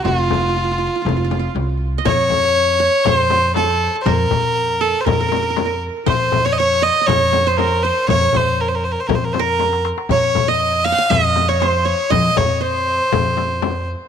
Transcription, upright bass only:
\new Staff \with { instrumentName = "Upright bass" } { \clef bass \time 4/4 \tempo 4 = 120 f,,2 f,,4 c,4 | f,2 f,2 | f,8 f,4. f,2 | f,2 f,2 |
f,8 f,4. f,2 | f,2 f,2 | f,8 f,4. f,2 | }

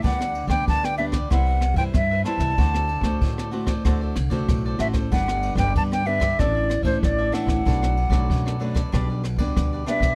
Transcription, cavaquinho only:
\new Staff \with { instrumentName = "Cavaquinho" } { \time 4/4 \key g \major \tempo 4 = 94 <d' g' b' d''>16 <g' b' d''>8 <g' b' d''>8 <g' b' d''>16 <d' g' b' d''>16 <g' b' d''>16 <e' b' c'' e''>16 <b' c'' e''>16 r16 <b' c'' e''>8 <b' c'' e''>16 <e' b' c'' e''>16 <b' c'' e''>16 | <fis' a' c'' d''>16 <a' c'' d''>8 <a' c'' d''>8 <a' c'' d''>16 <fis' a' c'' d''>16 <a' c'' d''>16 <fis' a' c'' d''>16 <a' c'' d''>16 r16 <a' c'' d''>8 <a' c'' d''>16 <fis' a' c'' d''>16 <a' c'' d''>16 | <d' g' b' d''>16 <g' b' d''>8 <g' b' d''>8 <g' b' d''>16 <d' g' b' d''>16 <g' b' d''>16 <d' a' d'' e''>16 <a' d'' e''>16 r16 <a' d'' e''>8 <a' d'' e''>16 <d' a' d'' e''>16 <a' d'' e''>16 | <d' a' b' d''>16 <a' b' d''>8 <a' b' d''>8 <a' b' d''>16 <d' a' b' d''>16 <a' b' d''>16 <d' g' b' d''>16 <g' b' d''>16 r16 <g' b' d''>8 <g' b' d''>16 <d' g' b' d''>16 <g' b' d''>16 | }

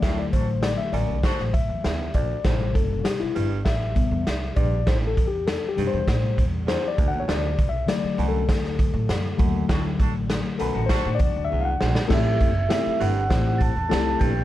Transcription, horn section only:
\new Staff \with { instrumentName = "Horn section" } { \time 4/4 \key a \dorian \tempo 4 = 100 <d' fis' a'>16 r16 <d' fis' a'>16 r4 r16 <d' fis' a'>8 r4. | r1 | r1 | r1 |
<d' fis' a'>16 r16 <d' fis' a'>16 r4 r16 <d' fis' a'>8 r4. | r1 | }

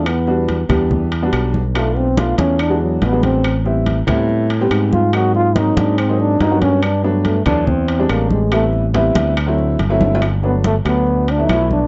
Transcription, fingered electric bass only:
\new Staff \with { instrumentName = "Fingered electric bass" } { \clef bass \time 4/4 \key g \major \tempo 4 = 142 e,4. e,4. b,,4~ | b,,4. e,4. a,,4~ | a,,4. a,4. aes,4~ | aes,4. aes,4. g,4~ |
g,4. e,4. a,,4~ | a,,4. d,4. g,,4~ | g,,4. d,4. b,,4 | }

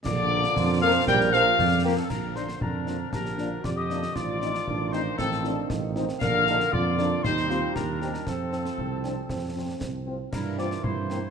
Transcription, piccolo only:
\new Staff \with { instrumentName = "Piccolo" } { \time 2/4 \key bes \major \tempo 4 = 117 d'''4. f'''8 | g'''8 f'''4 g''16 a''16 | bes''8 c'''8 bes''4 | bes''4 d'''16 ees'''8. |
d'''4. c'''8 | a''4 r4 | f'''4 d'''4 | c'''4 bes''4 |
a''2~ | a''4 r4 | bes''8 d'''8 c'''4 | }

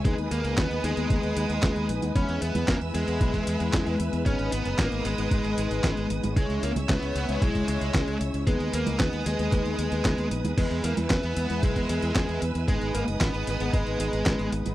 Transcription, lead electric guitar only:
\new Staff \with { instrumentName = "Lead electric guitar" } { \time 4/4 \key gis \minor \tempo 4 = 114 <gis gis'>8 <ais ais'>8 <b b'>8 <gis gis'>2 r8 | <cis' cis''>8 <b b'>8 <ais ais'>8 <gis gis'>2 r8 | <cis' cis''>8 <b b'>8 <ais ais'>8 <gis gis'>2 r8 | <gis gis'>8 <ais ais'>8 <b b'>4 <gis gis'>8 <gis gis'>4 r8 |
<gis gis'>8 <ais ais'>8 <b b'>8 <gis gis'>2 r8 | <gis gis'>8 <ais ais'>8 <b b'>4 <gis gis'>8 <gis gis'>4 r8 | <gis gis'>8 <ais ais'>8 <b b'>4 <gis gis'>8 <gis gis'>4 r8 | }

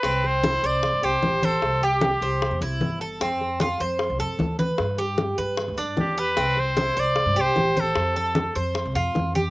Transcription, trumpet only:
\new Staff \with { instrumentName = "Trumpet" } { \time 4/4 \key c \major \tempo 4 = 151 b'8 c''4 d''4 c''4 a'8~ | a'8 g'2 r4. | r1 | r2. g'8 b'8~ |
b'8 c''4 d''4 c''4 a'8~ | a'4. r2 r8 | }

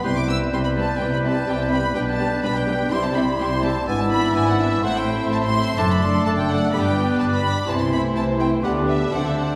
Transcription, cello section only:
\new Staff \with { instrumentName = "Cello section" } { \clef bass \time 4/4 \key g \major \tempo 4 = 126 c4 c4 c4 c4 | b,4 b,4 c4 c4 | gis,4 gis,4 a,4 a,4 | fis,4 fis,4 g,4 g,4 |
c4 c4 d4 d4 | }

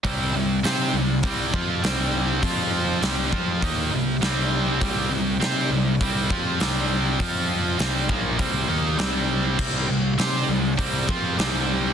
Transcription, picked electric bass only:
\new Staff \with { instrumentName = "Picked electric bass" } { \clef bass \time 4/4 \key f \major \tempo 4 = 101 c,8 c,8 c8 c,8 c,8 f,8 c,4 | f,4 c,8 f,8 ees,8 c,8 c,4 | c,8 c,8 c8 c,8 c,8 f,8 c,4 | f,4 c,8 bes,,8 c,8 ees,8 c,4 |
c,8 c,8 c8 c,8 c,8 f,8 c,4 | }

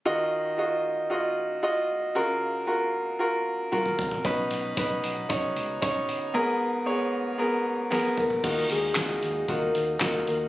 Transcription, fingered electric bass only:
\new Staff \with { instrumentName = "Fingered electric bass" } { \clef bass \time 4/4 \key ees \minor \tempo 4 = 114 r1 | r1 | b,,8 b,,8 b,,8 b,,8 b,,8 cis,8 b,,8 g,,8 | r1 |
ees,8 ees,8 ees,8 ees,8 ees,8 ees,8 ees,8 ees,8 | }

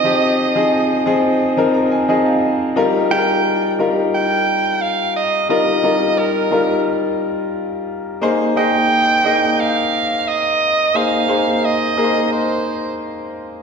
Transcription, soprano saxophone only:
\new Staff \with { instrumentName = "Soprano saxophone" } { \time 4/4 \key ees \major \tempo 4 = 88 ees''2. r4 | r8 g''4 r8 g''4 f''8 ees''8 | ees''4 bes'4 r2 | r8 g''4. f''4 ees''4 |
f''4 ees''4 c''4 r4 | }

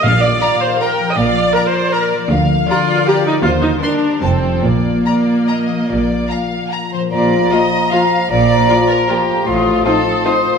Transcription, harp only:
\new Staff \with { instrumentName = "Harp" } { \time 3/4 \key bes \major \tempo 4 = 153 << { r2. | r2. | r2. | r2. |
r2. | r2. | <bes, bes f' d''>2.~ | <bes, bes f' d''>2. |
<a, c' f' ees''>2. | } \\ { <bes, bes bes'>8 bes8 f'8 bes'8 f'8 f8 | bes,8 bes8 f'8 bes'4 f8 | d8 bes8 f'8 bes'8 f'8 d'8 | ees8 g8 g'4 f8 <f' ees''>8 |
bes,8 bes8 f'8 d''8 f'8 f8 | bes,8 bes8 f'8 d''4 f8~ | f2.~ | f2.~ |
f2. | } >> }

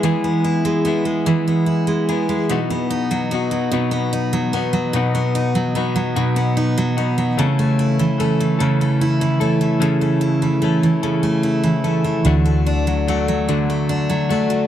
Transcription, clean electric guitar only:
\new Staff \with { instrumentName = "Clean electric guitar" } { \time 6/8 \key a \lydian \tempo 4. = 49 <e b e' gis'>4 <e b e' gis'>8 <e b e' gis'>4 <b e' gis'>8 | <b, fis b dis' fis'>4 <fis b dis' fis'>8 <b, fis b dis' fis'>4 <b dis' fis'>8 | <b, fis b dis' fis'>4 <fis b dis' fis'>8 <b, fis b dis' fis'>4 <b dis' fis'>8 | <cis e a cis' a'>4 <e a cis' a'>8 <cis e a cis' a'>4 <a cis' a'>8 |
<cis e a cis' a'>4 <e a cis' a'>8 <cis e a cis' a'>4 <a cis' a'>8 | <d fis a d' fis'>4 <fis a d' fis'>8 <d fis a d' fis'>4 <a d' fis'>8 | }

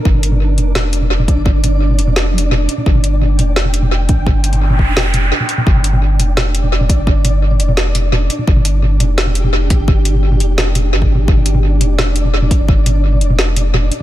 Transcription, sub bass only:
\new Staff \with { instrumentName = "Sub bass" } { \clef bass \time 4/4 \key c \dorian \tempo 4 = 171 g,,4. f,,2 r16 g,,16~ | g,,4. f,,2 r8 | g,,4. f,,2 r16 g,,16~ | g,,4. f,,4. r4 |
g,,4. f,,2 r16 g,,16~ | g,,4. f,,2 r8 | g,,4. f,,2 r16 g,,16~ | g,,4. f,,4. g,,4 |
g,,4. f,,2 r16 g,,16~ | g,,4. f,,2 r8 | }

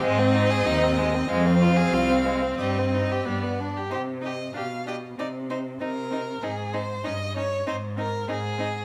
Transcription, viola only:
\new Staff \with { instrumentName = "Viola" } { \time 2/4 \key c \minor \tempo 4 = 96 c'2 | c'2~ | c'4 b8 r8 | ees'8 ees'8 d'8 d'8 |
c'8 c'8 c'8 c'8 | c'8 c'8 des'8 des'8 | c'8 c'8 c'8 c'8 | }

